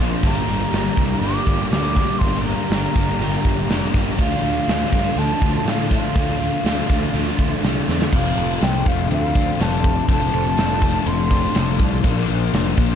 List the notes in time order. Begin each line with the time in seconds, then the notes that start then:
Already playing: A#2 D3 F3 D4 F4 A#4 F5 C6
0.00 A#1 F3 A#3 C4
0.23 G1 G2 D3 F3 G3 A#3 D4 G4 F5 A#5, kick, crash
0.47 G1 F3 G3 A#3 D4 G4
0.72 G1 D3 G3 A#3 D4 G4, snare, open hi-hat
0.95 C2 G2 D3 A#3 D4 G4, kick
1.00 G3
1.20 G1 G2 D3 F3 G3 A#3 G4 D6, open hi-hat
1.25 D4
1.46 G1 G2 D3 F3 G3 A#3 D4 G4, kick
1.71 D2 D3 F3 G3 A#3 D4 G4 D6, snare, open hi-hat
1.95 A#3 D4 G4, kick
2.00 G3
2.19 G1 G2 D3 F3 G3 C6, kick, open hi-hat
2.23 A#3 D4 G4
2.35 snare
2.45 F3 G3 A#3 D4 G4 A#5
2.70 G1 D3 G3 A#3 D4 G4, snare, open hi-hat
2.74 D4
2.94 G1 G2 D3 G3 A#3 D4 G4, kick
3.19 G1 G2 D3 F3 G3 A#3 D4, open hi-hat
3.23 G4
3.44 G1 G2 D3 F3 G3 A#3 D4 G4, kick
3.69 F1 D3 F3 G3 A#3 D4 G4, snare, open hi-hat
3.93 G1 G3 A#3 D4 G4, kick
4.18 D2 D3 F3 A3 D4 F4 A4 F5 C6, kick, open hi-hat
4.42 D2 F3 A3 D4 F4
4.68 D2 D3 F3 A3 C4 D4 F4, snare, open hi-hat
4.91 G2 D3 A3 D4 F4, kick
4.96 F3
5.17 D2 D3 F3 A3 D4 F4 A5, open hi-hat
5.41 D2 D3 F3 A3 D4 F4, kick
5.56 A5
5.65 A2 D3 F3 A3 D4 F4, snare, open hi-hat
5.70 F5
5.89 A3 D4 F4 F5, kick
5.93 F3
6.16 D2 D3 F3 A3 D4 F4, kick, open hi-hat
6.30 snare
6.38 F3 A3 D4 F4
6.43 F3
6.64 D2 D3 F3 A3 C4 D4 F4, snare, open hi-hat
6.87 D2 D3 A3 D4 F4, kick
6.92 F3
7.13 D2 D3 F3 A3 D4 F4, open hi-hat
7.37 D2 D3 F3 A3 D4 F4, kick
7.62 C2 D3 F3 A3 D4 F4, snare, open hi-hat
7.85 E2 A3 D4 F4, snare
7.90 F3
8.02 snare
8.11 F1 F2 C3 F3 A3 C4 D4 A4 F5 C6, kick, crash
8.36 F1 A4, ride
8.61 C2 C3 F3 A3 C4 D4 G5, snare, ride
8.85 F1 F3 A3 C4 F5, kick, ride
9.11 D2 C4 F5, ride
9.34 F3 A3 C4 D4, kick, ride
9.59 F1 C3 F3 A3 C4 A4 A5, snare, ride
9.84 D4, kick, ride
10.08 F1 F2 C3 F3 A3 C4 A5, kick, ride
10.33 F1 A4, ride
10.57 F1 C3 F3 A3 C4 D4, snare, ride
10.81 F3 A3 C4, kick, ride
11.06 F1 C4 C6, ride
11.30 F3 A3 C4 D4, kick, ride
11.54 F1 C3 F3 A3 C4 A4, snare, ride
11.79 C2 D4, kick, ride
12.03 A#1 A#2 F3 A#3 D4 A#4 C6, kick, ride
12.17 snare
12.28 A#1 D4, ride
12.52 F1 A#2 F3 A#3 C4 D4, snare, ride
12.77 A#1 F3 A#3 D4, kick, ride